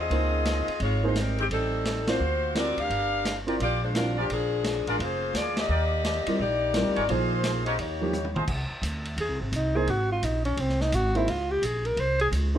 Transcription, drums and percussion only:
0.11 ride
0.45 snare, hi-hat pedal, ride
0.68 ride
0.80 ride
1.15 snare, hi-hat pedal, ride
1.38 ride
1.51 ride
1.85 snare, hi-hat pedal, ride
2.07 snare, ride
2.55 snare, hi-hat pedal, ride
2.78 ride
2.90 ride
3.25 snare, hi-hat pedal, ride
3.48 ride
3.60 ride
3.95 snare, hi-hat pedal, ride
4.30 ride
4.64 snare, hi-hat pedal, ride
4.87 ride
5.00 ride
5.34 snare, hi-hat pedal, ride
5.57 snare, ride
6.04 snare, hi-hat pedal, ride
6.26 ride
6.74 snare, hi-hat pedal, ride
6.96 ride
7.09 ride
7.44 snare, hi-hat pedal, ride
7.66 ride
7.79 ride
8.13 hi-hat pedal, high tom
8.25 high tom
8.36 mid tom
8.47 kick, crash
8.83 hi-hat pedal, ride
9.05 ride
9.18 ride
9.53 hi-hat pedal, ride
9.87 ride
10.23 hi-hat pedal, ride
10.45 ride
10.57 ride
10.69 snare
10.80 snare
10.92 hi-hat pedal, ride
11.15 ride
11.28 ride
11.63 hi-hat pedal, ride
11.85 ride
11.97 ride
12.19 ride
12.32 hi-hat pedal, ride

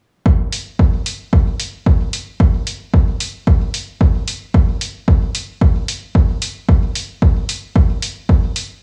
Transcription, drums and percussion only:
0.26 kick
0.52 open hi-hat
0.79 kick
1.06 open hi-hat
1.33 kick
1.60 open hi-hat
1.86 kick
2.13 open hi-hat
2.40 kick
2.67 open hi-hat
2.94 kick
3.20 open hi-hat
3.47 kick
3.74 open hi-hat
4.01 kick
4.28 open hi-hat
4.54 kick
4.81 open hi-hat
5.08 kick
5.35 open hi-hat
5.61 kick
5.88 open hi-hat
6.15 kick
6.42 open hi-hat
6.69 kick
6.95 open hi-hat
7.22 kick
7.49 open hi-hat
7.76 kick
8.02 open hi-hat
8.29 kick
8.56 open hi-hat

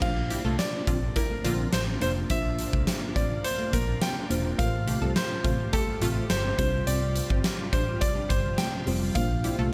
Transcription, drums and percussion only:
0.02 kick, crash
0.30 closed hi-hat
0.59 snare, closed hi-hat
0.87 kick, closed hi-hat
1.16 kick, closed hi-hat
1.45 closed hi-hat
1.73 snare, closed hi-hat
2.01 closed hi-hat
2.30 kick, closed hi-hat
2.59 closed hi-hat
2.73 kick
2.87 snare, closed hi-hat
3.16 kick, closed hi-hat
3.44 closed hi-hat
3.73 kick, closed hi-hat
4.02 snare, closed hi-hat
4.31 closed hi-hat
4.59 kick, closed hi-hat
4.88 closed hi-hat
5.16 snare, closed hi-hat
5.45 kick, closed hi-hat
5.73 kick, closed hi-hat
6.02 closed hi-hat
6.30 snare, closed hi-hat
6.59 kick, closed hi-hat
6.87 closed hi-hat
7.16 closed hi-hat
7.30 kick
7.44 snare, closed hi-hat
7.73 kick, closed hi-hat
8.01 kick, closed hi-hat
8.30 kick, closed hi-hat
8.58 snare, closed hi-hat
8.87 open hi-hat
9.15 kick, closed hi-hat
9.44 closed hi-hat

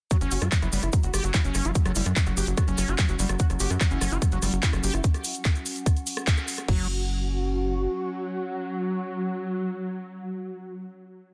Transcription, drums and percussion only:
0.11 kick, cross-stick, closed hi-hat, shaker
0.21 closed hi-hat, shaker
0.31 open hi-hat, shaker
0.42 cross-stick, closed hi-hat, shaker
0.52 kick, clap, closed hi-hat, shaker
0.62 cross-stick, closed hi-hat, shaker
0.72 open hi-hat, shaker
0.82 cross-stick, closed hi-hat, shaker
0.93 kick, closed hi-hat, shaker
1.03 closed hi-hat, shaker
1.14 cross-stick, open hi-hat, shaker
1.24 closed hi-hat, shaker
1.34 kick, cross-stick, clap, closed hi-hat, shaker
1.44 closed hi-hat, shaker
1.54 cross-stick, open hi-hat, shaker
1.65 closed hi-hat, shaker
1.75 kick, closed hi-hat, shaker
1.85 cross-stick, closed hi-hat, shaker
1.95 open hi-hat, shaker
2.06 cross-stick, closed hi-hat, shaker
2.16 kick, clap, closed hi-hat, shaker
2.26 cross-stick, closed hi-hat, shaker
2.37 open hi-hat, shaker
2.47 closed hi-hat, shaker
2.57 kick, cross-stick, closed hi-hat, shaker
2.68 closed hi-hat, shaker
2.78 cross-stick, open hi-hat, shaker
2.88 closed hi-hat, shaker
2.98 kick, cross-stick, clap, closed hi-hat, shaker
3.08 closed hi-hat, shaker
3.19 open hi-hat, shaker
3.29 cross-stick, closed hi-hat, shaker
3.39 kick, closed hi-hat, shaker
3.50 cross-stick, closed hi-hat, shaker
3.60 open hi-hat, shaker
3.70 cross-stick, shaker
3.81 kick, clap, closed hi-hat, shaker
3.91 closed hi-hat, shaker
4.01 cross-stick, open hi-hat, shaker
4.12 closed hi-hat, shaker
4.22 kick, cross-stick, closed hi-hat, shaker
4.32 closed hi-hat, shaker
4.42 cross-stick, open hi-hat, shaker
4.53 closed hi-hat, shaker
4.62 kick, clap, closed hi-hat, shaker
4.73 cross-stick, closed hi-hat, shaker
4.83 open hi-hat, shaker
4.94 cross-stick, closed hi-hat, shaker
5.04 kick, closed hi-hat, shaker
5.14 cross-stick, closed hi-hat, shaker
5.24 open hi-hat, shaker
5.35 closed hi-hat, shaker
5.45 kick, cross-stick, clap, closed hi-hat, shaker
5.55 closed hi-hat, shaker
5.66 open hi-hat, shaker
5.76 closed hi-hat, shaker
5.86 kick, cross-stick, closed hi-hat, shaker
5.97 closed hi-hat, shaker
6.07 open hi-hat, shaker
6.17 cross-stick, closed hi-hat, shaker
6.27 kick, clap, closed hi-hat, shaker
6.37 cross-stick, closed hi-hat, shaker
6.48 open hi-hat, shaker
6.58 cross-stick, closed hi-hat, shaker
6.68 kick, crash

